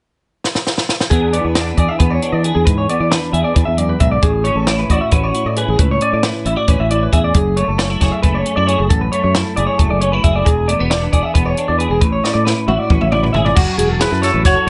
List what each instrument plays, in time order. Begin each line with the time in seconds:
0.44 snare
0.55 snare
0.67 snare
0.78 snare
0.89 snare
1.00 snare
1.10 clean electric guitar E2 E3 B3 D4 G#4, fingered electric bass E2, kick, closed hi-hat
1.33 clean electric guitar B3 D5, closed hi-hat
1.44 fingered electric bass E2, clean electric guitar B4
1.55 clean electric guitar D4 D5, snare, closed hi-hat
1.67 clean electric guitar B4
1.77 fingered electric bass E2, clean electric guitar G#4 D5, kick, closed hi-hat
1.89 clean electric guitar E5
1.99 fingered electric bass E2, clean electric guitar B3 B4, kick, closed hi-hat
2.10 clean electric guitar C#5
2.22 clean electric guitar D4, closed hi-hat
2.32 fingered electric bass E3, clean electric guitar D5
2.43 clean electric guitar G#4 B4, closed hi-hat
2.55 fingered electric bass E2, clean electric guitar G#4
2.65 clean electric guitar E2 B4, fingered electric bass G#2, kick, closed hi-hat
2.78 clean electric guitar C#5
2.89 clean electric guitar B3 D5, closed hi-hat
3.00 fingered electric bass E3, clean electric guitar D5
3.11 clean electric guitar D4 B4, snare, closed hi-hat
3.33 fingered electric bass E2, clean electric guitar G#4 E5, closed hi-hat
3.44 clean electric guitar D5
3.54 clean electric guitar E2 B4, fingered electric bass E2, kick, closed hi-hat
3.65 fingered electric bass E2, clean electric guitar E5
3.77 clean electric guitar F#2 D5, closed hi-hat
3.89 clean electric guitar B4
4.00 fingered electric bass B1, clean electric guitar G#2 E5, kick, closed hi-hat
4.11 clean electric guitar D5
4.22 fingered electric bass A1, clean electric guitar A2 G#4, kick, closed hi-hat
4.44 clean electric guitar C#4 C#5, closed hi-hat
4.55 fingered electric bass A1, clean electric guitar A4
4.67 clean electric guitar E4 C#5, snare, closed hi-hat
4.79 clean electric guitar B4
4.90 fingered electric bass A1, clean electric guitar F#4 D5, kick, closed hi-hat
5.01 clean electric guitar E5
5.11 fingered electric bass A1, clean electric guitar C#4 B4, kick, closed hi-hat
5.23 clean electric guitar C#5
5.34 clean electric guitar E4, closed hi-hat
5.45 fingered electric bass A2, clean electric guitar D5
5.56 clean electric guitar G#4 B4, closed hi-hat
5.68 fingered electric bass A1, clean electric guitar G#4
5.78 fingered electric bass C#2, clean electric guitar A2 B4, kick, closed hi-hat
5.91 clean electric guitar C#5
6.01 clean electric guitar C#4 D5, closed hi-hat
6.13 fingered electric bass A2, clean electric guitar D5
6.23 clean electric guitar E4 B4, snare, closed hi-hat
6.45 fingered electric bass A1, clean electric guitar E4 E5, closed hi-hat
6.56 clean electric guitar F#4 D5
6.68 fingered electric bass A1, clean electric guitar C#4 B4, kick, closed hi-hat
6.79 fingered electric bass A1, clean electric guitar E5
6.90 clean electric guitar E4 D5, closed hi-hat
7.03 clean electric guitar B4
7.12 fingered electric bass E2, clean electric guitar G#4 E5, kick, closed hi-hat
7.24 clean electric guitar D5
7.34 fingered electric bass F#1, clean electric guitar F#2 G#4, kick, closed hi-hat
7.57 clean electric guitar A3 C#5, closed hi-hat
7.68 fingered electric bass F#1, clean electric guitar A4
7.78 clean electric guitar C#4 C#5, snare, closed hi-hat
7.90 clean electric guitar E4 A4
8.01 fingered electric bass F#1, clean electric guitar G#4 C#5, kick, snare, closed hi-hat
8.11 clean electric guitar E5
8.22 fingered electric bass F#1, clean electric guitar A3 B4, kick, closed hi-hat
8.35 clean electric guitar C#5
8.45 clean electric guitar C#4, closed hi-hat
8.56 fingered electric bass F#2, clean electric guitar E4 D5
8.67 clean electric guitar G#4 C#5, closed hi-hat
8.78 fingered electric bass F#1, clean electric guitar G#4
8.89 fingered electric bass A1, clean electric guitar F#2 A4, kick, closed hi-hat
9.01 clean electric guitar B4
9.12 clean electric guitar A3 C#5, closed hi-hat
9.24 fingered electric bass F#2, clean electric guitar C#5
9.34 clean electric guitar E4 A4, snare, closed hi-hat
9.56 fingered electric bass F#1, clean electric guitar G#4 D5, closed hi-hat
9.67 clean electric guitar C#5
9.78 fingered electric bass F#1, clean electric guitar A3 A4, kick, closed hi-hat
9.90 fingered electric bass F#1, clean electric guitar D5
10.01 clean electric guitar C#4 C#5, closed hi-hat
10.12 clean electric guitar E4 B4
10.24 fingered electric bass F#1, clean electric guitar G#4 E5, kick, closed hi-hat
10.36 clean electric guitar D5
10.45 fingered electric bass E1, clean electric guitar E2 G#4, kick, closed hi-hat
10.68 clean electric guitar A3 D5, closed hi-hat
10.79 fingered electric bass E1, clean electric guitar B3 B4
10.90 clean electric guitar D4 D5, snare, closed hi-hat
11.01 clean electric guitar B4
11.13 fingered electric bass E1, clean electric guitar G#4 D5, kick, closed hi-hat
11.23 clean electric guitar E5
11.34 fingered electric bass E1, clean electric guitar B3 B4, kick, closed hi-hat
11.45 clean electric guitar C#5
11.57 clean electric guitar D4, closed hi-hat
11.68 fingered electric bass E2, clean electric guitar D5
11.79 clean electric guitar G#4 B4, closed hi-hat
11.90 fingered electric bass E1, clean electric guitar G#4
12.01 fingered electric bass A1, clean electric guitar A2 B4, kick, closed hi-hat
12.12 clean electric guitar C#5
12.24 clean electric guitar C#4 D5, snare
12.34 fingered electric bass A2, clean electric guitar D5
12.45 clean electric guitar E4 B4, snare
12.68 fingered electric bass A1, clean electric guitar F#4 E5, high tom
12.79 clean electric guitar D5
12.90 fingered electric bass A1, clean electric guitar C#4 B4, kick, mid tom
13.01 fingered electric bass A1, clean electric guitar E5, mid tom
13.12 clean electric guitar E4 D5, mid tom
13.23 clean electric guitar B4, floor tom
13.33 fingered electric bass G#1, clean electric guitar G#4 E5, floor tom
13.45 clean electric guitar D5, floor tom
13.55 fingered electric bass F#1, clean electric guitar F#2 F#4, kick, crash
13.78 fingered electric bass E1, clean electric guitar G#4, closed hi-hat
13.89 clean electric guitar A4
14.00 clean electric guitar E4 G#4 B4, snare, closed hi-hat
14.11 fingered electric bass F#2, clean electric guitar A4
14.22 clean electric guitar F#3 A4 C#5, snare, closed hi-hat
14.33 fingered electric bass A1, clean electric guitar B4
14.45 fingered electric bass F#1, clean electric guitar F#4 C#5, kick, snare, closed hi-hat
14.55 clean electric guitar A4